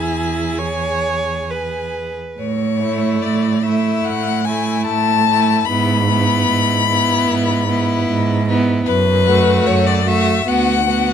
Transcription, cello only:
0, 0, Header, 1, 2, 480
1, 0, Start_track
1, 0, Key_signature, 3, "major"
1, 0, Tempo, 933126
1, 774, Tempo, 888889
1, 1254, Time_signature, 4, 2, 24, 8
1, 1254, Tempo, 835655
1, 1734, Tempo, 824176
1, 2694, Tempo, 800000
1, 6447, End_track
2, 0, Start_track
2, 0, Title_t, "Cello"
2, 0, Program_c, 0, 42
2, 0, Note_on_c, 0, 40, 60
2, 1144, Note_off_c, 0, 40, 0
2, 1252, Note_on_c, 0, 45, 77
2, 1677, Note_off_c, 0, 45, 0
2, 1735, Note_on_c, 0, 45, 75
2, 2160, Note_off_c, 0, 45, 0
2, 2216, Note_on_c, 0, 45, 71
2, 2638, Note_off_c, 0, 45, 0
2, 2694, Note_on_c, 0, 45, 81
2, 3118, Note_off_c, 0, 45, 0
2, 3172, Note_on_c, 0, 44, 96
2, 3601, Note_off_c, 0, 44, 0
2, 3659, Note_on_c, 0, 44, 81
2, 4081, Note_off_c, 0, 44, 0
2, 4138, Note_on_c, 0, 44, 86
2, 4560, Note_off_c, 0, 44, 0
2, 4618, Note_on_c, 0, 44, 94
2, 5033, Note_off_c, 0, 44, 0
2, 5086, Note_on_c, 0, 42, 108
2, 5509, Note_off_c, 0, 42, 0
2, 5565, Note_on_c, 0, 42, 89
2, 5991, Note_off_c, 0, 42, 0
2, 6045, Note_on_c, 0, 38, 81
2, 6447, Note_off_c, 0, 38, 0
2, 6447, End_track
0, 0, End_of_file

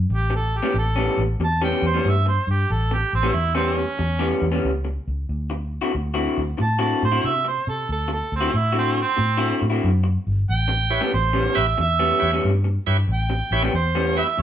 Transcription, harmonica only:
0, 0, Header, 1, 2, 480
1, 0, Start_track
1, 0, Tempo, 649351
1, 70, Time_signature, 4, 2, 24, 8
1, 10659, End_track
2, 0, Start_track
2, 0, Title_t, "Harmonica"
2, 0, Program_c, 0, 22
2, 95, Note_on_c, 0, 67, 83
2, 238, Note_off_c, 0, 67, 0
2, 264, Note_on_c, 0, 69, 84
2, 425, Note_on_c, 0, 67, 79
2, 436, Note_off_c, 0, 69, 0
2, 564, Note_off_c, 0, 67, 0
2, 579, Note_on_c, 0, 69, 93
2, 874, Note_off_c, 0, 69, 0
2, 1069, Note_on_c, 0, 81, 93
2, 1207, Note_off_c, 0, 81, 0
2, 1212, Note_on_c, 0, 79, 83
2, 1358, Note_off_c, 0, 79, 0
2, 1377, Note_on_c, 0, 72, 82
2, 1545, Note_on_c, 0, 76, 78
2, 1556, Note_off_c, 0, 72, 0
2, 1684, Note_off_c, 0, 76, 0
2, 1688, Note_on_c, 0, 72, 71
2, 1836, Note_off_c, 0, 72, 0
2, 1851, Note_on_c, 0, 67, 81
2, 2008, Note_on_c, 0, 69, 90
2, 2019, Note_off_c, 0, 67, 0
2, 2171, Note_on_c, 0, 67, 80
2, 2182, Note_off_c, 0, 69, 0
2, 2318, Note_off_c, 0, 67, 0
2, 2328, Note_on_c, 0, 60, 87
2, 2476, Note_on_c, 0, 64, 89
2, 2487, Note_off_c, 0, 60, 0
2, 2621, Note_off_c, 0, 64, 0
2, 2626, Note_on_c, 0, 60, 80
2, 2786, Note_on_c, 0, 61, 94
2, 2798, Note_off_c, 0, 60, 0
2, 3255, Note_off_c, 0, 61, 0
2, 4895, Note_on_c, 0, 81, 95
2, 5031, Note_off_c, 0, 81, 0
2, 5035, Note_on_c, 0, 81, 76
2, 5189, Note_off_c, 0, 81, 0
2, 5208, Note_on_c, 0, 72, 83
2, 5369, Note_on_c, 0, 76, 89
2, 5381, Note_off_c, 0, 72, 0
2, 5516, Note_off_c, 0, 76, 0
2, 5528, Note_on_c, 0, 72, 67
2, 5675, Note_off_c, 0, 72, 0
2, 5685, Note_on_c, 0, 69, 89
2, 5833, Note_off_c, 0, 69, 0
2, 5857, Note_on_c, 0, 69, 78
2, 5999, Note_off_c, 0, 69, 0
2, 6011, Note_on_c, 0, 69, 78
2, 6156, Note_off_c, 0, 69, 0
2, 6178, Note_on_c, 0, 60, 79
2, 6331, Note_on_c, 0, 64, 86
2, 6342, Note_off_c, 0, 60, 0
2, 6476, Note_off_c, 0, 64, 0
2, 6490, Note_on_c, 0, 60, 85
2, 6636, Note_off_c, 0, 60, 0
2, 6668, Note_on_c, 0, 60, 98
2, 7115, Note_off_c, 0, 60, 0
2, 7765, Note_on_c, 0, 79, 105
2, 8222, Note_off_c, 0, 79, 0
2, 8233, Note_on_c, 0, 72, 97
2, 8564, Note_on_c, 0, 76, 106
2, 8575, Note_off_c, 0, 72, 0
2, 8711, Note_off_c, 0, 76, 0
2, 8731, Note_on_c, 0, 76, 98
2, 9185, Note_off_c, 0, 76, 0
2, 9708, Note_on_c, 0, 79, 88
2, 10153, Note_off_c, 0, 79, 0
2, 10164, Note_on_c, 0, 72, 91
2, 10466, Note_off_c, 0, 72, 0
2, 10485, Note_on_c, 0, 76, 86
2, 10656, Note_off_c, 0, 76, 0
2, 10659, End_track
0, 0, End_of_file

